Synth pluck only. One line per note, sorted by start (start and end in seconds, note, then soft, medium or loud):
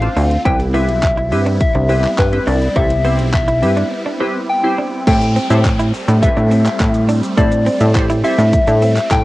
0.02 0.22 C4 medium
0.02 0.22 D4 medium
0.02 0.22 F4 medium
0.02 0.22 C5 medium
0.45 0.59 C4 medium
0.45 0.59 E4 medium
0.45 0.59 G4 medium
0.45 0.59 B4 medium
0.74 1.01 C4 medium
0.74 1.01 E4 medium
0.74 1.01 G4 medium
0.74 1.01 B4 medium
1.32 1.59 C4 medium
1.32 1.59 E4 medium
1.32 1.59 G4 medium
1.32 1.59 B4 medium
1.89 2.09 C4 medium
1.89 2.09 E4 medium
1.89 2.10 G4 medium
1.89 2.10 B4 medium
2.32 2.53 C4 medium
2.32 2.53 E4 medium
2.32 2.53 G4 medium
2.32 2.53 B4 medium
2.76 2.89 C4 medium
2.76 2.89 E4 medium
2.76 2.89 G4 medium
2.76 2.90 A4 medium
3.05 3.32 C4 medium
3.05 3.32 E4 medium
3.05 3.32 G4 medium
3.05 3.32 C5 medium
3.62 3.89 C4 medium
3.62 3.89 E4 medium
3.62 3.89 G4 medium
3.62 3.89 B4 medium
4.20 4.40 C4 medium
4.20 4.40 E4 medium
4.20 4.40 G4 medium
4.20 4.40 B4 loud
4.63 4.83 C4 medium
4.63 4.84 E4 medium
4.63 4.84 G4 medium
4.63 4.84 C5 loud
5.07 5.27 C4 medium
5.07 5.27 E4 medium
5.07 5.27 G4 medium
5.07 5.27 A4 medium
5.07 5.27 C5 medium
5.50 5.83 C4 medium
5.50 5.84 E4 medium
5.50 5.84 G4 medium
5.50 5.84 A4 medium
5.50 5.84 C5 medium
6.22 6.76 C4 medium
6.22 6.76 E4 medium
6.22 6.76 G4 medium
6.22 6.76 A4 medium
6.22 6.76 B4 medium
7.37 7.64 C4 medium
7.37 7.64 E4 medium
7.37 7.64 G4 medium
7.37 7.64 A4 medium
7.37 7.64 C5 medium
7.95 8.09 C4 medium
7.95 8.09 E4 medium
7.95 8.09 G4 medium
7.95 8.09 A4 medium
7.95 8.09 C5 medium
8.24 8.77 C4 medium
8.24 8.78 E4 medium
8.24 8.78 G4 medium
8.24 8.78 A4 medium
8.24 8.78 C5 medium